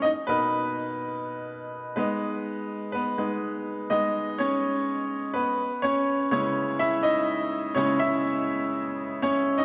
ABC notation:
X:1
M:4/4
L:1/16
Q:1/4=124
K:G#m
V:1 name="Upright piano"
[Dd]2 [B,B]6 z8 | B8 [B,B]8 | d4 [Cc]8 [B,B]4 | [Cc]4 [Cc]4 [Ee]2 [Dd]4 z2 |
[Cc]2 [Ee]6 z4 [Cc]3 [Dd] |]
V:2 name="Upright piano"
z2 [B,,DA]2 z12 | [G,B,D]2 z8 [G,B,D]2 z4 | [G,B,D]2 z12 z2 | z4 [C,G,E]2 z8 z2 |
[C,G,E]6 z8 z2 |]